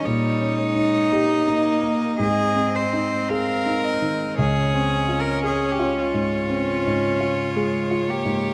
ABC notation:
X:1
M:4/4
L:1/16
Q:1/4=56
K:Dblyd
V:1 name="Violin"
d2 d2 e8 f2 e2 | d16 |]
V:2 name="Cello"
E8 A2 c2 B4 | A3 B A G F8 G2 |]
V:3 name="Grand piano"
(3B,,2 D2 E2 (3G2 E2 B,2 (3A,,2 C2 E2 (3A2 E2 E,2 | (3D,,2 C2 F2 (3A2 F2 A,,2 (3C2 A,,2 F2 (3A2 F2 A,,2 |]
V:4 name="Viola"
G,2 A,2 B,4 C8 | D8 D4 A,2 B,2 |]